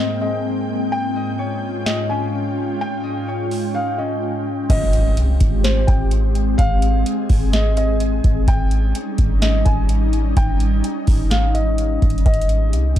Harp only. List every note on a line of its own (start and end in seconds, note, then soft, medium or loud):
0.00 0.20 G#3 medium
0.00 1.45 C4 medium
0.00 0.98 G#4 medium
0.00 1.24 C5 medium
0.00 0.58 G5 medium
0.21 0.97 G#3 medium
0.92 2.48 G5 loud
1.16 2.94 D#5 medium
1.39 3.28 C#5 medium
1.86 3.75 D#4 medium
2.10 3.98 C#4 medium
2.81 4.36 G5 medium
3.04 4.82 D#5 medium
3.28 5.19 C#5 medium
3.75 6.45 D#4 medium
3.99 6.88 C#4 medium